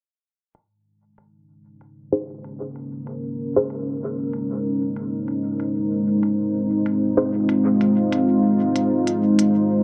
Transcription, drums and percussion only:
0.55 closed hi-hat soft
1.18 closed hi-hat soft
1.81 closed hi-hat soft
2.44 closed hi-hat soft
2.76 closed hi-hat soft
3.07 closed hi-hat soft
3.70 closed hi-hat soft
4.33 closed hi-hat soft
4.96 closed hi-hat soft
5.28 closed hi-hat soft
5.60 closed hi-hat soft
6.23 closed hi-hat soft
6.86 closed hi-hat soft
7.49 closed hi-hat soft
7.81 closed hi-hat soft
8.12 closed hi-hat soft
8.76 closed hi-hat soft
9.07 closed hi-hat soft
9.39 closed hi-hat soft

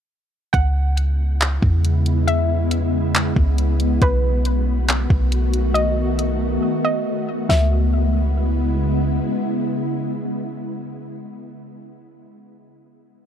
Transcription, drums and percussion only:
0.54 kick loud
0.54 closed hi-hat medium
0.97 closed hi-hat medium
1.41 clap loud
1.41 closed hi-hat medium
1.62 kick loud
1.85 closed hi-hat medium
2.06 closed hi-hat medium
2.28 closed hi-hat medium
2.71 closed hi-hat medium
3.15 clap loud
3.15 closed hi-hat medium
3.36 kick loud
3.58 closed hi-hat medium
3.80 closed hi-hat medium
4.02 kick loud
4.02 closed hi-hat medium
4.45 closed hi-hat medium
4.88 clap loud
4.88 closed hi-hat medium
5.10 kick loud
5.32 closed hi-hat medium
5.54 closed hi-hat medium
5.75 closed hi-hat medium
6.19 closed hi-hat medium
7.50 snare loud

